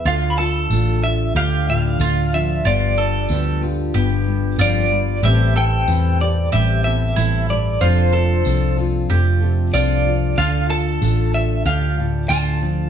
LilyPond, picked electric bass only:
\new Staff \with { instrumentName = "Picked electric bass" } { \clef bass \time 4/4 \key d \dorian \tempo 4 = 93 d,4 a,,4 d,4 d,4 | g,,4 d,4 g,,4 g,,4 | a,,4 e,4 a,,4 a,,4 | f,,4 c,4 f,,4 c,4 |
d,4 a,,4 d,4 d,4 | }